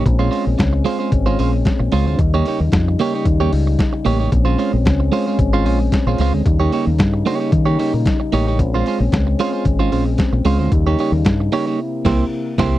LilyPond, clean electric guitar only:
\new Staff \with { instrumentName = "Clean electric guitar" } { \time 4/4 \key bes \dorian \tempo 4 = 113 r16 <aes des' f' c''>16 <aes des' f' c''>16 r8. <aes des' f' c''>16 <aes des' f' c''>16 r16 <aes des' f' c''>16 <aes des' f' c''>16 r8. <aes des' f' c''>16 <aes des' f' c''>16 | r16 <bes ees' g' des''>16 <bes ees' g' des''>16 r8. <bes ees' g' des''>16 <bes ees' g' des''>16 r16 <bes ees' g' des''>8 r8. <bes ees' g' des''>16 <bes ees' g' des''>16 | r16 <aes des' f' c''>16 <aes des' f' c''>16 r8. <aes des' f' c''>16 <aes des' f' c''>16 r16 <aes des' f' c''>16 <aes des' f' c''>16 r8 <aes des' f' c''>16 <aes des' f' c''>8 | r16 <bes ees' g' des''>16 <bes ees' g' des''>16 r8. <bes ees' g' des''>16 <bes ees' g' des''>16 r16 <bes ees' g' des''>16 <bes ees' g' des''>16 r8. <bes ees' g' des''>16 <bes ees' g' des''>16 |
r16 <aes des' f' c''>16 <aes des' f' c''>16 r8. <aes des' f' c''>16 <aes des' f' c''>16 r16 <aes des' f' c''>16 <aes des' f' c''>16 r8. <aes des' f' c''>16 <aes des' f' c''>16 | r16 <bes ees' g' des''>16 <bes ees' g' des''>16 r8. <bes ees' g' des''>16 <bes ees' g' des''>16 r8 <bes e' g' c''>8 r8 <bes e' g' c''>8 | }